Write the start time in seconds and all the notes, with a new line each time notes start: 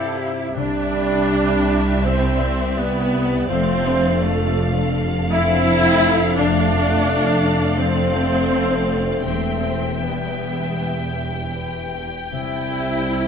Already playing: G2 C3 B3 E4 G4 A4 D5 E5 F5
0.18 F4 G4
0.56 C2 C3 G3 D4 G4 D5 E5
0.93 G3
1.30 D5
1.67 E4
2.03 G3 C4 C5
2.40 G3
2.75 G3 B3 B4 D5
3.12 E4
3.48 F1 F2 F3 A3 C4 A4 C5 F5
3.86 D4
4.21 F3 A3 A4
4.59 D4
4.95 A3
5.31 C4 D4 E4 E5
5.65 A4
6.02 D4
6.37 F3 A3 D4 D5
6.72 D4
7.06 A4
7.42 D4
7.78 F3 A3 C4 C5
8.14 A3
8.50 A4
8.88 D4
9.25 E1 E2 E3 A3 C4 G4 C5 E5 G5
9.64 E4
10.03 G3 B3 B4
10.41 G4
10.79 B3
11.19 E4
11.56 B4
11.94 G4
12.31 C2 C3 C4 E4 D5 E5
12.67 C4
13.03 G4